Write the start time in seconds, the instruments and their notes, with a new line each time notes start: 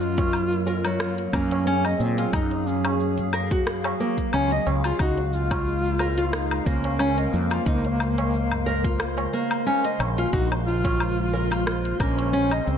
Already playing: fretless electric bass F#2, ambient pad F#3 C#4 A#4 D#5
0.00 ambient pad A#3, duduk F4, shaker
0.18 kick, closed hi-hat, tabla na, shaker
0.33 low woodblock, shaker
0.52 shaker
0.59 ambient pad F5
0.67 nylon-string guitar A#4, tabla tin, shaker
0.85 nylon-string guitar F#3, closed hi-hat, tabla na, low woodblock, shaker
1.00 duduk F4, cross-stick, shaker
1.18 closed hi-hat
1.33 fretless electric bass F#2, nylon-string guitar A#3, duduk C#4, kick, low woodblock, shaker
1.45 ambient pad G#4
1.51 closed hi-hat, tabla na, shaker
1.67 nylon-string guitar C#4, shaker
1.85 nylon-string guitar D#5, closed hi-hat, tabla tin, low woodblock, shaker
2.00 fretless electric bass A#2, duduk C4, tabla tin, shaker
2.18 nylon-string guitar F4, closed hi-hat, shaker
2.33 fretless electric bass F#2, duduk D#4, nylon-string guitar D#4, kick, low woodblock, shaker
2.51 closed hi-hat, tabla tin
2.67 duduk C#4, shaker
2.85 closed hi-hat, tabla na, low woodblock, shaker
3.00 shaker
3.18 closed hi-hat, tabla ge, shaker
3.33 nylon-string guitar A#4, tabla tin, low woodblock, shaker
3.51 nylon-string guitar F#4, kick, closed hi-hat, shaker
3.67 cross-stick, shaker
3.84 closed hi-hat, tabla na, low woodblock
4.00 nylon-string guitar A#3, tabla na, shaker
4.18 kick, closed hi-hat, shaker
4.33 fretless electric bass C#2, nylon-string guitar C#4, low woodblock, shaker
4.51 nylon-string guitar D#5, closed hi-hat, shaker
4.67 fretless electric bass C#2, tabla na, shaker
4.84 nylon-string guitar F4, closed hi-hat, low woodblock, shaker
4.99 fretless electric bass C#2, ambient pad G#3, synth texture A#3 C5, nylon-string guitar D#4, duduk F#4, kick, low woodblock, shaker
5.18 closed hi-hat, tabla tin
5.27 ambient pad C#3, duduk F#4
5.33 duduk F4, shaker
5.51 kick, closed hi-hat, tabla na, low woodblock, shaker
5.67 shaker
5.84 shaker
5.99 ambient pad A#4, nylon-string guitar A#4, tabla tin, low woodblock, shaker
6.18 nylon-string guitar F4, closed hi-hat, tabla na, shaker
6.33 duduk D#4, cross-stick, shaker
6.51 closed hi-hat, low woodblock
6.66 fretless electric bass C#2, nylon-string guitar A#3, duduk C#4, kick, shaker
6.84 closed hi-hat, tabla na, shaker
6.99 nylon-string guitar C#4, low woodblock, shaker
7.17 nylon-string guitar D#5, closed hi-hat, tabla tin, shaker
7.33 fretless electric bass F2, duduk A#3, tabla tin, shaker
7.51 nylon-string guitar F4, closed hi-hat, low woodblock, shaker
7.66 fretless electric bass C#2, nylon-string guitar D#4, kick, shaker
7.85 closed hi-hat, tabla tin
8.00 low woodblock, shaker
8.18 closed hi-hat, tabla na, shaker
8.34 shaker
8.52 tabla ge, low woodblock, shaker
8.66 nylon-string guitar A#4, tabla tin, shaker
8.84 nylon-string guitar F4, kick, closed hi-hat, shaker
9.00 cross-stick, low woodblock, shaker
9.18 closed hi-hat, tabla na
9.33 nylon-string guitar A#3, tabla na, shaker
9.51 closed hi-hat, low woodblock, shaker
9.66 nylon-string guitar C#4, shaker
9.85 nylon-string guitar D#5, closed hi-hat, shaker
10.00 fretless electric bass A#1, tabla na, low woodblock, shaker
10.18 nylon-string guitar F4, closed hi-hat, shaker
10.33 fretless electric bass A#1, nylon-string guitar D#4, duduk F#4, kick, shaker
10.52 closed hi-hat, tabla tin, low woodblock
10.67 duduk F4, shaker
10.85 kick, closed hi-hat, tabla na, shaker
11.00 low woodblock, shaker
11.19 shaker
11.33 nylon-string guitar A#4, tabla tin, shaker
11.48 nylon-string guitar F4, ambient pad C5, closed hi-hat, tabla na, low woodblock, shaker
11.66 duduk F4, cross-stick, shaker
11.85 closed hi-hat
11.99 fretless electric bass A#1, nylon-string guitar A#3, duduk C#4, kick, low woodblock, shaker
12.18 closed hi-hat, tabla na, shaker
12.33 nylon-string guitar C#4, shaker
12.51 nylon-string guitar D#5, closed hi-hat, tabla tin, low woodblock, shaker
12.67 fretless electric bass C#2, duduk C4, tabla tin, shaker
12.74 ambient pad D#5